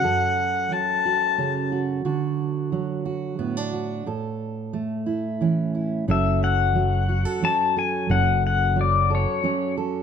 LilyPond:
<<
  \new Staff \with { instrumentName = "Cello" } { \time 3/4 \key fis \minor \tempo 4 = 90 fis''4 a''4. r8 | r2. | r2. | r2. |
r2. | }
  \new Staff \with { instrumentName = "Pedal steel guitar" } { \time 3/4 \key fis \minor r2. | r2. | r2. | e''8 fis''4. a''8 gis''8 |
fis''8 fis''8 d''8 cis''4 r8 | }
  \new Staff \with { instrumentName = "Steel-string acoustic guitar" } { \time 3/4 \key fis \minor << { a'4. fis'8 cis'8 fis'8 | fis'4. fis'8 b16 d'16 fis'8 | a'4. e'8 cis'8 e'8 | <fis cis' a'>4. fis'16 a'16 cis'8 a'8 |
r4. a'8 cis'8 a'8 | } \\ { <fis, fis>4 fis4 cis4 | d4 fis4 a,4 | a,4 a4 e4 | fis,4 fis4 fis4 |
fis,4 fis4 fis4 | } >> }
  \new Staff \with { instrumentName = "Fingered electric bass" } { \clef bass \time 3/4 \key fis \minor r2. | r2. | r2. | fis,,2 r4 |
fis,,2 r4 | }
>>